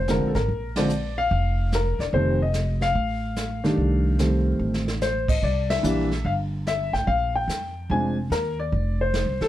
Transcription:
0.00 0.18 F1 medium
0.08 0.32 D3 soft
0.08 0.33 F3 soft
0.08 0.33 G#3 soft
0.08 0.33 C4 medium
0.08 0.28 A#4 medium
0.08 snare soft
0.08 hi-hat pedal soft
0.21 0.34 A#1 soft
0.28 0.36 A4 medium
0.34 0.48 G#1 medium
0.34 0.77 A#4 medium
0.34 snare soft
0.48 1.27 A#1 medium
0.48 brush sweep soft
0.48 kick soft
0.76 0.89 D3 medium
0.76 0.89 F3 medium
0.76 0.89 G#3 soft
0.76 0.90 C4 medium
0.76 1.19 D5 medium
0.76 snare medium
0.76 ride medium
0.89 hi-hat pedal soft
1.18 1.69 F5 loud
1.31 1.96 F1 medium
1.31 brush sweep soft
1.31 kick soft
1.72 2.02 A#4 medium
1.72 snare soft
1.72 hi-hat pedal soft
1.99 2.12 E1 medium
1.99 2.05 D5 medium
1.99 snare soft
2.13 2.92 F1 medium
2.13 2.39 D#3 medium
2.13 2.38 G3 soft
2.13 2.39 A3 soft
2.13 2.39 C4 medium
2.13 2.39 C5 medium
2.13 brush sweep soft
2.13 kick soft
2.42 2.84 D#5 medium
2.54 snare medium
2.54 hi-hat pedal medium
2.81 5.09 F5 loud
2.81 snare soft
2.95 3.74 A1 medium
2.95 brush sweep soft
2.95 kick soft
3.36 snare soft
3.36 hi-hat pedal soft
3.64 4.16 D#3 medium
3.64 4.17 G3 medium
3.64 4.17 A3 soft
3.64 4.17 D4 medium
3.64 snare soft
3.77 4.56 C2 medium
3.77 brush sweep soft
3.77 kick soft
4.19 4.82 D#3 soft
4.19 4.82 G3 soft
4.19 4.82 A3 soft
4.19 4.83 C4 medium
4.19 snare soft
4.19 hi-hat pedal soft
4.59 5.38 A1 medium
4.74 snare soft
4.88 snare medium
5.02 5.30 C5 medium
5.02 snare soft
5.02 hi-hat pedal soft
5.28 5.42 D#5 medium
5.28 kick medium
5.28 crash medium
5.42 5.81 C2 medium
5.42 5.69 D5 medium
5.42 brush sweep soft
5.42 kick soft
5.70 6.27 E5 medium
5.70 snare medium
5.70 ride medium
5.83 6.22 A#1 medium
5.83 6.08 E3 medium
5.83 6.08 G3 medium
5.83 6.09 A#3 medium
5.83 6.09 D4 medium
5.83 hi-hat pedal soft
6.11 snare soft
6.25 6.89 G1 medium
6.25 6.32 F5 medium
6.25 brush sweep soft
6.25 kick soft
6.67 6.92 E5 medium
6.67 snare soft
6.67 hi-hat pedal soft
6.93 7.06 A1 medium
6.93 7.08 G5 medium
6.93 snare soft
7.07 7.46 A#1 medium
7.07 7.33 F5 medium
7.07 brush sweep soft
7.07 kick soft
7.36 7.92 G5 medium
7.48 7.87 F2 medium
7.48 snare medium
7.48 hi-hat pedal medium
7.90 8.28 F1 medium
7.90 8.15 F3 soft
7.90 8.15 G#3 soft
7.90 8.15 C4 soft
7.90 8.16 D4 soft
7.90 8.16 G#5 medium
7.90 brush sweep soft
7.90 kick soft
8.30 8.69 D#2 medium
8.30 8.57 A#4 medium
8.30 snare soft
8.30 hi-hat pedal soft
8.60 9.01 D5 medium
8.72 9.23 F1 medium
8.72 brush sweep soft
8.72 kick soft
9.01 9.43 C5 medium
9.14 snare medium
9.14 hi-hat pedal soft
9.26 9.39 C2 medium
9.40 9.48 D#2 medium
9.40 9.48 A4 loud
9.40 snare soft

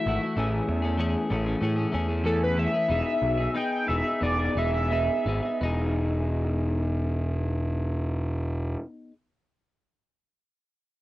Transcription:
0.00 0.94 E5 loud
0.06 0.17 G#1 medium
0.06 0.36 E3 medium
0.06 0.25 A3 medium
0.06 0.24 E4 medium
0.06 0.22 F#4 medium
0.23 0.37 A3 soft
0.23 0.38 E4 medium
0.23 0.35 F#4 medium
0.37 0.60 A1 medium
0.37 0.97 E3 medium
0.37 0.84 A3 medium
0.37 0.83 C#4 medium
0.37 0.82 G#4 medium
0.68 1.15 E2 medium
0.82 0.98 A3 medium
0.82 0.98 C#4 medium
0.82 1.00 G#4 medium
0.98 1.30 E3 medium
0.98 1.29 A3 medium
0.98 1.30 C#4 medium
0.98 1.32 G#4 medium
1.30 1.54 A1 medium
1.30 1.60 E3 medium
1.30 1.47 A3 medium
1.30 1.46 C#4 medium
1.30 1.46 G#4 medium
1.46 1.60 A3 soft
1.46 1.61 C#4 medium
1.46 1.63 G#4 medium
1.61 1.85 A2 medium
1.61 1.91 E3 medium
1.61 1.78 A3 medium
1.61 1.76 C#4 medium
1.61 1.76 G#4 medium
1.76 1.91 A3 medium
1.76 1.93 C#4 medium
1.76 1.94 G#4 medium
1.92 2.66 E2 medium
1.92 2.24 E3 medium
1.92 2.09 A3 medium
1.92 2.08 C#4 medium
1.92 2.08 G#4 medium
2.08 2.24 A3 soft
2.08 2.24 C#4 medium
2.08 2.26 G#4 medium
2.24 2.56 E3 medium
2.24 2.56 A3 medium
2.24 2.57 C#4 medium
2.24 2.59 G#4 medium
2.24 2.40 A4 loud
2.44 2.57 B4 medium
2.56 2.93 E3 medium
2.56 2.75 A3 medium
2.56 2.73 C#4 medium
2.56 2.73 G#4 medium
2.56 3.53 E5 medium
2.73 2.88 A3 medium
2.73 2.87 C#4 medium
2.73 2.91 G#4 medium
2.88 3.01 E1 medium
2.88 3.53 B3 medium
2.88 3.39 D#4 medium
2.88 3.36 G#4 medium
3.22 3.46 B1 medium
3.38 3.54 D#4 soft
3.38 3.56 G#4 medium
3.54 3.86 B3 medium
3.54 3.88 D#4 medium
3.54 3.89 G#4 medium
3.54 3.71 G5 medium
3.72 3.87 G5 medium
3.87 4.01 E1 medium
3.87 4.20 B3 medium
3.87 4.06 D#4 medium
3.87 4.03 G#4 medium
3.87 4.21 E5 medium
4.04 4.21 D#4 soft
4.04 4.23 G#4 medium
4.21 4.47 E1 medium
4.21 4.56 B3 medium
4.21 4.41 D#4 medium
4.21 4.38 G#4 medium
4.21 4.55 D5 medium
4.39 4.57 D#4 medium
4.39 4.58 G#4 medium
4.55 5.08 E1 medium
4.55 4.89 B3 medium
4.55 4.76 D#4 medium
4.55 4.73 G#4 medium
4.55 5.60 E5 loud
4.74 4.91 D#4 soft
4.74 4.92 G#4 medium
4.91 5.25 B3 medium
4.91 5.26 D#4 medium
4.91 5.27 G#4 medium
5.26 5.39 G#1 medium
5.26 5.60 B3 medium
5.26 5.44 D#4 medium
5.26 5.41 G#4 medium
5.43 5.60 D#4 soft
5.43 5.59 G#4 medium
5.61 8.75 E1 medium
5.61 9.11 B3 medium
5.61 9.13 D#4 medium
5.65 9.15 G#4 medium

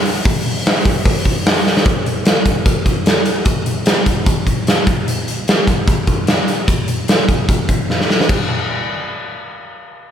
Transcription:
0.05 open hi-hat medium
0.25 kick loud
0.25 open hi-hat medium
0.46 open hi-hat medium
0.66 snare loud
0.66 open hi-hat loud
0.85 kick medium
0.85 open hi-hat medium
1.05 kick loud
1.05 open hi-hat medium
1.25 kick medium
1.25 open hi-hat medium
1.46 snare loud
1.46 open hi-hat medium
1.67 snare medium
1.77 snare medium
1.86 kick loud
1.86 closed hi-hat medium
2.06 closed hi-hat medium
2.25 snare loud
2.25 closed hi-hat medium
2.46 kick medium
2.46 closed hi-hat medium
2.66 kick loud
2.66 closed hi-hat medium
2.86 kick medium
2.86 closed hi-hat medium
3.06 snare loud
3.06 closed hi-hat medium
3.25 closed hi-hat medium
3.45 kick loud
3.45 closed hi-hat medium
3.66 closed hi-hat medium
3.86 snare loud
3.86 closed hi-hat medium
4.06 kick medium
4.06 closed hi-hat medium
4.26 kick loud
4.26 closed hi-hat medium
4.47 kick medium
4.47 closed hi-hat medium
4.67 snare medium
4.67 closed hi-hat medium
4.87 kick loud
4.87 closed hi-hat medium
5.08 closed hi-hat medium
5.28 closed hi-hat medium
5.48 snare loud
5.48 closed hi-hat medium
5.67 kick medium
5.67 closed hi-hat medium
5.88 kick loud
5.88 closed hi-hat medium
6.07 kick medium
6.07 closed hi-hat soft
6.27 snare loud
6.27 closed hi-hat medium
6.48 closed hi-hat medium
6.68 kick loud
6.68 closed hi-hat medium
6.88 closed hi-hat medium
7.08 snare loud
7.08 closed hi-hat medium
7.29 kick medium
7.29 closed hi-hat medium
7.49 kick loud
7.49 closed hi-hat medium
7.69 kick medium
7.69 closed hi-hat medium
7.90 snare medium
8.01 snare medium
8.10 snare medium
8.21 snare medium
8.29 kick medium
8.29 crash medium

